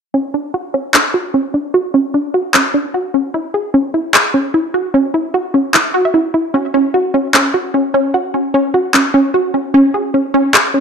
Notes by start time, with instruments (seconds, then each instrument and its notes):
0.14 synth arpeggio sound C#4
0.34 synth arpeggio sound D4
0.54 synth arpeggio sound F#4
0.74 synth arpeggio sound C#4
0.94 synth arpeggio sound D4, clap
1.14 synth arpeggio sound F#4
1.34 synth arpeggio sound C#4
1.54 synth arpeggio sound D4
1.74 synth arpeggio sound F#4
1.94 synth arpeggio sound C#4
2.14 synth arpeggio sound D4
2.34 synth arpeggio sound F#4
2.54 synth arpeggio sound C#4, clap
2.74 synth arpeggio sound D4
2.94 synth arpeggio sound F#4
3.14 synth arpeggio sound C#4
3.34 synth arpeggio sound E4
3.54 synth arpeggio sound G#4
3.74 synth arpeggio sound C#4
3.94 synth arpeggio sound E4
4.14 synth arpeggio sound G#4, clap
4.34 synth arpeggio sound C#4
4.54 synth arpeggio sound E4
4.74 synth arpeggio sound F#4
4.94 synth arpeggio sound C#4
5.14 synth arpeggio sound E4
5.34 synth arpeggio sound F#4
5.54 synth arpeggio sound C#4
5.74 synth arpeggio sound E4, clap
5.94 synth arpeggio sound F#4
6.05 synth arpeggio sound E5
6.14 synth arpeggio sound E4
6.34 synth arpeggio sound E4
6.54 synth arpeggio sound C#4
6.74 synth arpeggio sound C#4
6.94 synth arpeggio sound F#4
7.14 synth arpeggio sound C#4
7.34 synth arpeggio sound C#4, clap
7.54 synth arpeggio sound F#4
7.74 synth arpeggio sound C#4
7.94 synth arpeggio sound C#4
8.14 synth arpeggio sound F#4
8.34 synth arpeggio sound C#4
8.54 synth arpeggio sound C#4
8.74 synth arpeggio sound F#4
8.94 synth arpeggio sound C#4, clap
9.14 synth arpeggio sound C#4
9.34 synth arpeggio sound F#4
9.54 synth arpeggio sound C#4
9.74 synth arpeggio sound C#4
9.94 synth arpeggio sound G#4
10.14 synth arpeggio sound C#4
10.34 synth arpeggio sound C#4
10.54 synth arpeggio sound G#4, clap
10.74 synth arpeggio sound C#4